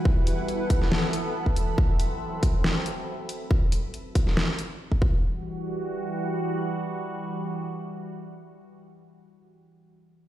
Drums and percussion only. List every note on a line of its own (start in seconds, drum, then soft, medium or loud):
0.05 kick loud
0.27 closed hi-hat medium
0.48 closed hi-hat soft
0.70 kick loud
0.70 closed hi-hat medium
0.82 snare soft
0.92 snare loud
1.13 closed hi-hat medium
1.46 kick medium
1.56 closed hi-hat medium
1.78 kick loud
2.00 closed hi-hat medium
2.43 kick loud
2.43 closed hi-hat medium
2.64 snare loud
2.86 closed hi-hat medium
3.29 closed hi-hat medium
3.51 kick loud
3.72 closed hi-hat medium
3.94 closed hi-hat soft
4.15 kick loud
4.15 closed hi-hat medium
4.27 snare soft
4.37 snare loud
4.59 closed hi-hat medium
4.92 kick medium
5.02 kick loud